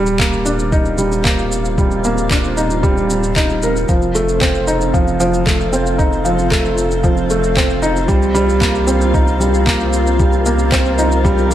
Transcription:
Already playing: analog synth bass D#1, felt piano G3, ambient pad C4
0.06 ambient pad F4, shaker
0.19 felt piano A#3, kick, clap, shaker
0.33 shaker
0.45 felt piano D4, shaker
0.59 shaker
0.72 felt piano D#4, kick, shaker
0.85 shaker
0.98 felt piano G3, shaker
1.12 shaker
1.24 felt piano A#3, kick, clap, shaker
1.38 shaker
1.52 shaker
1.65 shaker
1.78 felt piano G3, kick, shaker
1.91 shaker
2.04 felt piano A#3, shaker
2.18 shaker
2.31 felt piano D4, kick, clap, shaker
2.44 shaker
2.57 felt piano D#4, shaker
2.71 shaker
2.83 felt piano G3, kick, shaker
2.97 shaker
3.10 shaker
3.23 shaker
3.36 felt piano D#4, kick, clap, shaker
3.49 shaker
3.63 felt piano A#4, shaker
3.76 shaker
3.89 analog synth bass F1, felt piano F3, kick, shaker
4.02 shaker
4.15 felt piano A3, shaker
4.29 shaker
4.41 felt piano C4, kick, clap, shaker
4.55 shaker
4.67 felt piano D#4, shaker
4.81 shaker
4.94 felt piano F3, kick, shaker
5.08 shaker
5.20 felt piano F3, shaker
5.34 shaker
5.46 felt piano A3, kick, clap, shaker
5.60 shaker
5.73 felt piano C4, shaker
5.86 shaker
5.98 felt piano D#4, kick, shaker
6.12 shaker
6.25 felt piano F3, shaker
6.38 shaker
6.51 felt piano A3, kick, clap, shaker
6.65 shaker
6.78 shaker
6.91 shaker
7.03 felt piano F3, kick, shaker
7.17 shaker
7.30 felt piano A3, shaker
7.44 shaker
7.57 felt piano C4, kick, clap, shaker
7.70 shaker
7.82 felt piano D#4, shaker
7.96 shaker
8.08 analog synth bass C2, felt piano G3, kick, shaker
8.22 shaker
8.35 felt piano G3, shaker
8.49 shaker
8.61 felt piano A#3, kick, clap, shaker
8.75 shaker
8.86 felt piano C4, ambient pad A#4, shaker
9.01 shaker
9.14 felt piano D#4, kick, shaker
9.28 shaker
9.40 felt piano G3, shaker
9.54 shaker
9.66 felt piano A#3, kick, clap, shaker
9.80 shaker
9.93 shaker
10.07 shaker
10.19 felt piano G3, kick, shaker
10.33 shaker
10.46 felt piano A#3, shaker
10.59 shaker
10.72 felt piano C4, kick, clap, shaker
10.85 shaker
10.98 felt piano D#4, shaker
11.12 shaker
11.24 felt piano G3, kick, shaker
11.38 shaker
11.51 felt piano G3, shaker

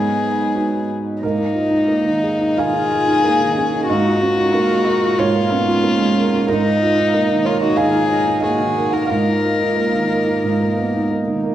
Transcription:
Already playing: felt piano G#2, harmonium F#3 D#4 B4, cello B3, violin G#4
0.54 felt piano B3 D#4 F#4
1.21 felt piano G#2 A#4, harmonium A#3 D#4 A#4, violin D#4
1.38 felt piano D#4
1.55 felt piano F4
1.70 felt piano D#4
1.88 felt piano A#3
2.05 felt piano D#3
2.24 felt piano G#4
2.41 felt piano D#4
2.58 felt piano D#3 F5, cello F4, violin G#4
2.74 felt piano D#4
2.92 felt piano F4
3.08 felt piano D#4
3.25 felt piano A#3, cello D#4
3.41 felt piano D#3
3.57 cello C#4, felt piano G#4
3.74 felt piano D#4
3.88 felt piano G#2 D#5, cello D#4, violin F#4, harmonium F5
4.06 felt piano F4
4.22 cello C#4, felt piano F#4
4.38 felt piano F4
4.53 felt piano A#3, cello F4
4.72 felt piano G#3
4.85 cello D#4, felt piano A#4
5.04 felt piano F4
5.19 felt piano G#2 C#5, violin F4, cello F4
5.36 felt piano A#3
5.51 felt piano B3, cello C#4
5.68 felt piano F4
5.84 felt piano A#3
6.00 felt piano G#3
6.18 felt piano A#4
6.34 felt piano F4
6.47 felt piano G#2 A#4, harmonium A#3 D#4 A#4, cello D#4, violin D#4
6.65 felt piano D#4
6.81 cello F4, felt piano F4
6.98 felt piano D#4
7.13 felt piano A#3, cello D#4
7.31 felt piano D#3
7.45 violin F4, felt piano A#4 C#5
7.60 felt piano D#4 D#5, violin F#4
7.76 felt piano D#3 F5, cello F4, violin G#4
7.96 felt piano D#4
8.10 cello D#4, felt piano F4
8.27 felt piano D#4
8.41 felt piano A#3 D#5, cello F#4, violin G#4
8.60 felt piano D#3
8.76 felt piano A#4
8.91 felt piano D#4 F#5, violin A#4
9.06 cello F4, violin A#4, felt piano F5
9.11 felt piano G#2
9.28 felt piano D#4
9.45 felt piano F4
9.61 felt piano D#4
9.77 felt piano A#3
9.93 felt piano D#3
10.10 felt piano A#4
10.27 felt piano D#4
10.44 felt piano G#2
10.61 felt piano A#3
10.77 felt piano B3
10.95 felt piano D#4
11.11 felt piano A#3
11.28 felt piano D#3
11.43 felt piano A#4

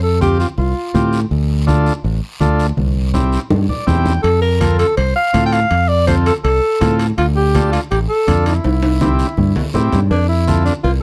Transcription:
Already playing: fingered electric bass F2
0.03 alto saxophone A4
0.21 transistor combo organ C4 F4 G4, alto saxophone G4, high conga, short guiro
0.40 alto saxophone F4, short guiro
0.58 fingered electric bass C2, alto saxophone F4, high conga, long guiro
0.94 fingered electric bass A2, transistor combo organ C4 F4 G4, high conga, short guiro
1.13 short guiro
1.31 fingered electric bass D2, high conga, long guiro
1.67 transistor combo organ D4 F4 A4, high conga, short guiro
1.86 short guiro
2.04 fingered electric bass A1, high conga, long guiro
2.40 fingered electric bass D2, transistor combo organ D4 F4 A4, high conga, short guiro
2.60 short guiro
2.77 fingered electric bass C2, high conga, long guiro
3.14 transistor combo organ C4 E4 G4, low conga, short guiro
3.33 short guiro
3.50 fingered electric bass G2, low conga, long guiro
3.69 transistor combo organ D5, low conga
3.87 fingered electric bass E2, transistor combo organ C4 E4 G4 G5, low conga, short guiro
4.06 low conga, short guiro
4.23 fingered electric bass F2, alto saxophone A4, high conga, high timbale, long guiro
4.42 alto saxophone A#4
4.60 transistor combo organ C4 F4 A4, high conga, high timbale, short guiro
4.79 alto saxophone A4, high timbale, short guiro
4.97 fingered electric bass C2, alto saxophone C5, high conga, high timbale, long guiro
5.16 alto saxophone F5
5.33 fingered electric bass A2, transistor combo organ C4 F4 A4, high conga, high timbale, short guiro
5.46 alto saxophone G5
5.53 alto saxophone F5, high timbale, short guiro
5.71 fingered electric bass F2, high conga, high timbale, long guiro
5.89 alto saxophone D5
6.07 transistor combo organ C4 F4 A4, alto saxophone C5, high conga, high timbale, short guiro
6.26 alto saxophone A4, high timbale, short guiro
6.44 fingered electric bass C2, alto saxophone A4, high conga, high timbale, long guiro
6.81 fingered electric bass A2, transistor combo organ C4 F4 A4, high conga, high timbale, low timbale, short guiro
6.99 high timbale, short guiro
7.18 fingered electric bass D2, alto saxophone F4, high conga, high timbale, long guiro
7.36 alto saxophone G4
7.54 transistor combo organ D4 F4 A4, high conga, high timbale, short guiro
7.72 alto saxophone F4, high timbale, short guiro
7.91 fingered electric bass A1, alto saxophone G4, high conga, high timbale, long guiro
8.09 alto saxophone A4
8.27 fingered electric bass F2, transistor combo organ D4 F4 A4, high conga, high timbale, short guiro
8.46 alto saxophone E4, high timbale, short guiro
8.64 fingered electric bass C2, high conga, high timbale, long guiro
8.83 high timbale
9.01 transistor combo organ C4 E4 G4, high conga, high timbale, short guiro
9.19 short guiro
9.37 fingered electric bass G2, high conga, long guiro
9.56 high conga, low timbale
9.74 fingered electric bass A2, transistor combo organ C4 E4 G4, low conga, short guiro
9.92 fingered electric bass G2, low conga, low timbale, short guiro
10.10 fingered electric bass F2, alto saxophone D4, cowbell, high conga, long guiro
10.28 alto saxophone E4
10.47 transistor combo organ C4 F4 A4, high conga, short guiro
10.65 alto saxophone D4, short guiro
10.83 fingered electric bass C2, alto saxophone F4, cowbell, high conga, long guiro

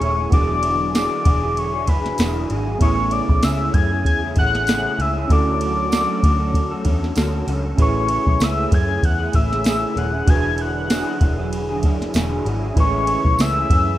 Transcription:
Already playing: analog synth pad C#3 A3 E4 G#4, synth keys B3 C#4 E4 G#4, soft synth lead C#6
0.01 picked electric bass D#1, clean electric guitar A3 C#4 E4 G#4, ride
0.19 clean electric guitar C#4 E4 G#4
0.30 picked electric bass E1, analog synth pad D3 F#3 E4, clean electric guitar E3 D4 F#4 G#4, synth keys B3 D4 F#4, soft synth lead D6, kick, ride
0.35 synth keys G#4
0.63 ride
0.94 clean electric guitar E3 D4 F#4 G#4, soft synth lead D6, snare, ride, tambourine
1.25 picked electric bass E1, clean electric guitar E3 D4 F#4 G#4, kick, ride
1.42 clean electric guitar D4 F#4 G#4
1.57 soft synth lead C#6, ride
1.74 clean electric guitar D4 F#4 G#4
1.87 picked electric bass F#1, clean electric guitar E3 D4 F#4 G#4, soft synth lead B5, kick, ride
2.06 snare, ride
2.18 picked electric bass E1, clean electric guitar E3 D4 F#4 G#4, snare, ride, tambourine
2.49 picked electric bass G#1, clean electric guitar E3 D4 F#4 G#4, ride
2.66 clean electric guitar D4 F#4 G#4
2.78 picked electric bass A1, analog synth pad C#3 A3, clean electric guitar A3 C#4 E4 G#4, synth keys B3 C#4 E4, soft synth lead C#6, kick, ride
2.84 synth keys G#4
3.11 soft synth lead D6, ride
3.29 picked electric bass B1, kick
3.43 picked electric bass C#2, clean electric guitar A3 C#4 E4 G#4, soft synth lead E6, snare, ride, tambourine
3.73 picked electric bass F#2, clean electric guitar A3 C#4 E4 G#4, soft synth lead G#6, kick, ride
3.91 clean electric guitar C#4 E4 G#4
4.05 picked electric bass E2, soft synth lead G#6, kick, ride
4.22 clean electric guitar C#4 E4 G#4
4.36 picked electric bass A1, clean electric guitar A3 C#4 E4 G#4, soft synth lead F#6, kick, ride
4.55 snare, ride
4.67 clean electric guitar A3 C#4 E4 G#4, snare, ride, tambourine
4.99 picked electric bass C#2, clean electric guitar A3 C#4 E4 G#4, soft synth lead E6, ride
5.16 clean electric guitar C#4 E4 G#4
5.27 picked electric bass D2, clean electric guitar D3 C#4 F#4 A4, analog synth pad F#3 C#4 F#4, synth keys C#4 E4 F#4, kick, ride
5.32 synth keys A4, soft synth lead D6
5.61 ride
5.91 clean electric guitar D3 C#4 F#4 A4, snare, ride, tambourine
6.23 picked electric bass D2, clean electric guitar D3 C#4 F#4 A4, kick, ride
6.40 clean electric guitar C#4 F#4 A4
6.54 kick, ride
6.71 clean electric guitar C#4 F#4 A4
6.85 picked electric bass E2, clean electric guitar D3 C#4 F#4 A4, kick, ride
7.04 snare
7.16 picked electric bass D2, clean electric guitar D3 C#4 F#4 A4, snare, ride, tambourine
7.46 picked electric bass C#2, clean electric guitar D3 C#4 F#4 A4, open hi-hat, ride
7.64 clean electric guitar C#4 F#4 A4
7.76 picked electric bass A1, analog synth pad C#3 E4 G#4, clean electric guitar A3 C#4 E4 G#4, synth keys C#4 E4 G#4, kick, ride
7.81 synth keys B4, soft synth lead C#6
8.09 ride
8.27 picked electric bass B1, kick
8.40 picked electric bass C#2, clean electric guitar A3 C#4 E4 G#4, soft synth lead E6, snare, ride, tambourine
8.71 picked electric bass F#2, clean electric guitar A3 C#4 E4 G#4, soft synth lead G#6, kick, ride
8.88 clean electric guitar C#4 E4 G#4
9.03 picked electric bass E2, soft synth lead F#6, kick, ride
9.19 clean electric guitar C#4 E4 G#4
9.33 picked electric bass A1, clean electric guitar A3 C#4 E4 G#4, soft synth lead E6, kick, ride
9.53 snare, ride
9.64 clean electric guitar A3 C#4 E4 G#4, snare, ride, tambourine
9.95 picked electric bass D#1, clean electric guitar A3 C#4 E4 G#4, soft synth lead F#6, ride
10.12 clean electric guitar C#4 E4 G#4
10.26 picked electric bass E1, analog synth pad D3 F#3, clean electric guitar E3 D4 F#4 G#4, synth keys D4 F#4 G#4, soft synth lead G#6, kick, ride
10.31 synth keys B4
10.58 soft synth lead F#6, ride
10.90 clean electric guitar E3 D4 F#4 G#4, snare, ride, tambourine
11.20 picked electric bass E1, clean electric guitar E3 D4 F#4 G#4, kick, ride
11.39 clean electric guitar D4 F#4 G#4
11.53 ride
11.69 clean electric guitar D4 F#4 G#4
11.83 picked electric bass F#1, clean electric guitar E3 D4 F#4 G#4, kick, ride
12.02 snare, ride
12.14 picked electric bass E1, clean electric guitar E3 D4 F#4 G#4, snare, ride, tambourine
12.45 picked electric bass G#1, clean electric guitar E3 D4 F#4 G#4, ride
12.63 clean electric guitar D4 F#4 G#4
12.74 picked electric bass A1, analog synth pad C#3 E3, synth keys G#3 C#4 E4, clean electric guitar A3 C#4, kick, ride
12.78 clean electric guitar E4 G#4, synth keys B4, soft synth lead C#6
13.07 ride
13.25 picked electric bass B1, kick
13.39 picked electric bass C#2, clean electric guitar A3 C#4 E4 G#4, soft synth lead E6, snare, ride, tambourine
13.70 picked electric bass F#2, clean electric guitar A3 C#4 E4 G#4, kick, ride
13.87 clean electric guitar C#4 E4 G#4

